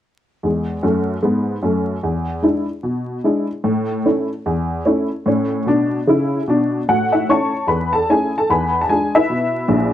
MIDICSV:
0, 0, Header, 1, 2, 480
1, 0, Start_track
1, 0, Key_signature, 3, "major"
1, 0, Tempo, 402685
1, 507, Time_signature, 4, 2, 24, 8
1, 11839, End_track
2, 0, Start_track
2, 0, Title_t, "Honky-tonk piano"
2, 0, Program_c, 0, 3
2, 515, Note_on_c, 0, 40, 48
2, 534, Note_on_c, 0, 56, 46
2, 741, Control_c, 0, 64, 127
2, 895, Note_off_c, 0, 40, 0
2, 906, Note_off_c, 0, 56, 0
2, 987, Note_on_c, 0, 42, 57
2, 1001, Control_c, 0, 64, 0
2, 1006, Note_on_c, 0, 57, 58
2, 1370, Note_off_c, 0, 42, 0
2, 1382, Note_off_c, 0, 57, 0
2, 1461, Note_on_c, 0, 44, 58
2, 1485, Note_on_c, 0, 59, 49
2, 1846, Note_off_c, 0, 44, 0
2, 1861, Note_off_c, 0, 59, 0
2, 1938, Note_on_c, 0, 42, 51
2, 1961, Note_on_c, 0, 57, 52
2, 2325, Note_off_c, 0, 42, 0
2, 2338, Note_off_c, 0, 57, 0
2, 2422, Note_on_c, 0, 40, 52
2, 2662, Control_c, 0, 64, 127
2, 2831, Note_off_c, 0, 40, 0
2, 2889, Note_on_c, 0, 56, 35
2, 2901, Note_on_c, 0, 62, 40
2, 2903, Note_on_c, 0, 64, 43
2, 2917, Control_c, 0, 64, 0
2, 3157, Note_off_c, 0, 56, 0
2, 3166, Note_off_c, 0, 62, 0
2, 3167, Note_off_c, 0, 64, 0
2, 3376, Note_on_c, 0, 47, 53
2, 3787, Note_off_c, 0, 47, 0
2, 3862, Note_on_c, 0, 62, 39
2, 3865, Note_on_c, 0, 56, 46
2, 3873, Note_on_c, 0, 64, 45
2, 4126, Note_off_c, 0, 62, 0
2, 4128, Note_off_c, 0, 56, 0
2, 4135, Note_off_c, 0, 64, 0
2, 4338, Note_on_c, 0, 45, 67
2, 4572, Control_c, 0, 64, 127
2, 4748, Note_off_c, 0, 45, 0
2, 4831, Note_on_c, 0, 57, 45
2, 4832, Note_on_c, 0, 61, 42
2, 4838, Note_on_c, 0, 64, 45
2, 4842, Control_c, 0, 64, 0
2, 5093, Note_off_c, 0, 57, 0
2, 5094, Note_off_c, 0, 61, 0
2, 5098, Note_off_c, 0, 64, 0
2, 5315, Note_on_c, 0, 40, 61
2, 5718, Note_off_c, 0, 40, 0
2, 5787, Note_on_c, 0, 61, 48
2, 5788, Note_on_c, 0, 57, 50
2, 5798, Note_on_c, 0, 64, 50
2, 6050, Note_off_c, 0, 61, 0
2, 6051, Note_off_c, 0, 57, 0
2, 6059, Note_off_c, 0, 64, 0
2, 6268, Note_on_c, 0, 45, 64
2, 6290, Note_on_c, 0, 61, 58
2, 6470, Control_c, 0, 64, 127
2, 6650, Note_off_c, 0, 45, 0
2, 6664, Note_off_c, 0, 61, 0
2, 6749, Note_on_c, 0, 47, 59
2, 6760, Control_c, 0, 64, 0
2, 6770, Note_on_c, 0, 62, 66
2, 7131, Note_off_c, 0, 47, 0
2, 7144, Note_off_c, 0, 62, 0
2, 7238, Note_on_c, 0, 49, 57
2, 7260, Note_on_c, 0, 64, 57
2, 7617, Note_off_c, 0, 49, 0
2, 7630, Note_off_c, 0, 64, 0
2, 7721, Note_on_c, 0, 47, 59
2, 7742, Note_on_c, 0, 62, 58
2, 8099, Note_off_c, 0, 47, 0
2, 8112, Note_off_c, 0, 62, 0
2, 8208, Note_on_c, 0, 45, 52
2, 8211, Note_on_c, 0, 78, 68
2, 8228, Note_on_c, 0, 66, 47
2, 8417, Control_c, 0, 64, 127
2, 8476, Note_off_c, 0, 66, 0
2, 8487, Note_off_c, 0, 78, 0
2, 8493, Note_on_c, 0, 76, 50
2, 8513, Note_on_c, 0, 64, 33
2, 8606, Note_off_c, 0, 45, 0
2, 8673, Note_off_c, 0, 64, 0
2, 8675, Note_off_c, 0, 76, 0
2, 8682, Control_c, 0, 64, 0
2, 8691, Note_on_c, 0, 57, 30
2, 8692, Note_on_c, 0, 61, 36
2, 8699, Note_on_c, 0, 85, 69
2, 8701, Note_on_c, 0, 64, 35
2, 8703, Note_on_c, 0, 73, 54
2, 8714, Note_on_c, 0, 81, 53
2, 8948, Note_off_c, 0, 57, 0
2, 8948, Note_off_c, 0, 61, 0
2, 8955, Note_off_c, 0, 64, 0
2, 9132, Note_off_c, 0, 73, 0
2, 9138, Note_off_c, 0, 81, 0
2, 9144, Note_on_c, 0, 40, 52
2, 9155, Note_on_c, 0, 83, 61
2, 9163, Note_off_c, 0, 85, 0
2, 9164, Note_on_c, 0, 71, 57
2, 9424, Note_off_c, 0, 71, 0
2, 9439, Note_off_c, 0, 83, 0
2, 9450, Note_on_c, 0, 81, 71
2, 9471, Note_on_c, 0, 69, 48
2, 9553, Note_off_c, 0, 40, 0
2, 9632, Note_off_c, 0, 69, 0
2, 9634, Note_off_c, 0, 81, 0
2, 9649, Note_on_c, 0, 61, 41
2, 9652, Note_on_c, 0, 57, 33
2, 9657, Note_on_c, 0, 80, 64
2, 9662, Note_on_c, 0, 64, 42
2, 9669, Note_on_c, 0, 68, 49
2, 9907, Note_off_c, 0, 61, 0
2, 9909, Note_off_c, 0, 57, 0
2, 9916, Note_off_c, 0, 64, 0
2, 9947, Note_off_c, 0, 68, 0
2, 9961, Note_off_c, 0, 80, 0
2, 9988, Note_on_c, 0, 81, 63
2, 9995, Note_on_c, 0, 69, 48
2, 10121, Note_off_c, 0, 69, 0
2, 10126, Note_on_c, 0, 40, 57
2, 10127, Note_off_c, 0, 81, 0
2, 10138, Note_on_c, 0, 83, 67
2, 10147, Note_on_c, 0, 71, 46
2, 10149, Note_on_c, 0, 80, 52
2, 10316, Control_c, 0, 64, 127
2, 10486, Note_off_c, 0, 71, 0
2, 10486, Note_off_c, 0, 80, 0
2, 10506, Note_off_c, 0, 83, 0
2, 10507, Note_on_c, 0, 81, 59
2, 10526, Note_off_c, 0, 40, 0
2, 10594, Note_off_c, 0, 81, 0
2, 10600, Note_on_c, 0, 56, 34
2, 10600, Note_on_c, 0, 62, 33
2, 10601, Control_c, 0, 64, 0
2, 10601, Note_on_c, 0, 80, 69
2, 10607, Note_on_c, 0, 65, 30
2, 10621, Note_on_c, 0, 68, 50
2, 10860, Note_off_c, 0, 56, 0
2, 10860, Note_off_c, 0, 62, 0
2, 10865, Note_off_c, 0, 65, 0
2, 10873, Note_off_c, 0, 68, 0
2, 10883, Note_off_c, 0, 80, 0
2, 10906, Note_on_c, 0, 76, 76
2, 10914, Note_on_c, 0, 71, 51
2, 10920, Note_on_c, 0, 64, 55
2, 11081, Note_on_c, 0, 47, 49
2, 11483, Note_off_c, 0, 47, 0
2, 11541, Note_on_c, 0, 46, 58
2, 11543, Note_on_c, 0, 34, 66
2, 11808, Note_off_c, 0, 71, 0
2, 11810, Note_off_c, 0, 64, 0
2, 11839, Note_off_c, 0, 34, 0
2, 11839, Note_off_c, 0, 46, 0
2, 11839, Note_off_c, 0, 76, 0
2, 11839, End_track
0, 0, End_of_file